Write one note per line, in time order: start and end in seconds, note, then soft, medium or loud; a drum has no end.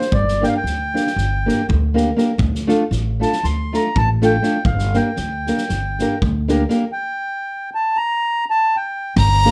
0.00 0.14 C5 loud
0.00 snare soft
0.12 0.43 G1 medium
0.12 0.44 D5 medium
0.12 kick loud
0.28 snare soft
0.41 0.55 A#3 medium
0.41 0.56 D4 medium
0.41 0.56 G4 medium
0.41 0.56 A#4 medium
0.41 0.49 G5 loud
0.41 snare soft
0.48 0.54 F5 medium
0.57 1.67 G5 loud
0.64 0.95 D2 medium
0.64 snare soft
0.94 1.08 A#3 medium
0.94 1.08 D4 medium
0.94 1.08 G4 medium
0.94 1.09 A#4 medium
0.94 snare soft
1.07 snare soft
1.16 1.48 G1 medium
1.16 snare soft
1.46 1.60 A#3 medium
1.46 1.61 D4 medium
1.46 1.61 G4 medium
1.46 1.61 A#4 medium
1.46 snare soft
1.69 2.11 D2 loud
1.69 kick medium
1.94 2.08 A#3 medium
1.94 2.09 D4 medium
1.94 2.09 G4 medium
1.94 2.09 A#4 medium
1.94 snare soft
2.16 2.30 A#3 medium
2.16 2.30 D4 medium
2.16 2.31 G4 medium
2.16 2.31 A#4 medium
2.16 snare soft
2.38 2.70 D2 medium
2.38 kick loud
2.55 snare soft
2.67 2.82 A3 medium
2.67 2.82 D4 medium
2.67 2.83 F4 medium
2.67 2.83 A4 medium
2.67 snare soft
2.91 3.23 A1 medium
2.91 snare soft
3.20 3.34 A3 medium
3.20 3.35 D4 medium
3.20 3.35 F4 medium
3.20 3.35 A4 medium
3.20 3.45 A5 medium
3.20 snare soft
3.32 snare soft
3.44 3.75 D2 medium
3.44 3.75 C6 loud
3.44 snare soft
3.73 3.87 A3 medium
3.73 3.87 D4 medium
3.73 3.87 F4 medium
3.73 3.88 A4 medium
3.73 3.98 A#5 medium
3.73 snare soft
3.96 4.38 A1 loud
3.96 4.09 A5 loud
3.96 kick medium
4.22 4.35 A3 medium
4.22 4.35 D4 medium
4.22 4.36 F4 medium
4.22 4.36 A4 medium
4.22 4.64 G5 loud
4.22 snare soft
4.42 4.56 A3 medium
4.42 4.57 D4 medium
4.42 4.57 F4 medium
4.42 4.57 A4 medium
4.42 snare soft
4.65 4.97 G1 loud
4.65 4.97 F5 medium
4.65 kick loud
4.79 snare soft
4.94 5.09 A#3 medium
4.94 5.09 D4 medium
4.94 5.09 G4 medium
4.94 5.09 A#4 medium
4.94 6.19 G5 medium
4.94 snare soft
5.16 5.49 D2 medium
5.16 snare soft
5.47 5.61 A#3 medium
5.47 5.62 D4 medium
5.47 5.62 G4 medium
5.47 5.62 A#4 medium
5.47 snare soft
5.58 snare soft
5.69 6.02 G1 medium
5.69 snare soft
5.99 6.14 A#3 medium
5.99 6.14 D4 medium
5.99 6.15 G4 medium
5.99 6.15 A#4 medium
5.99 snare soft
6.22 6.64 D2 loud
6.22 kick medium
6.48 6.62 A#3 medium
6.48 6.62 D4 medium
6.48 6.62 G4 medium
6.48 6.63 A#4 medium
6.48 snare soft
6.69 6.83 A#3 medium
6.69 6.83 D4 medium
6.69 6.84 G4 medium
6.69 6.84 A#4 medium
6.69 snare soft
6.92 7.70 G5 loud
7.75 7.97 A5 medium
7.97 8.45 A#5 loud
8.51 8.76 A5 loud
8.77 9.15 G5 medium
9.16 9.47 G1 loud
9.16 9.51 A#5 loud
9.16 kick loud
9.45 9.51 A#3 medium
9.45 9.51 D4 medium
9.45 9.51 G4 medium
9.45 9.51 A#4 medium
9.45 9.51 D5 medium
9.45 snare soft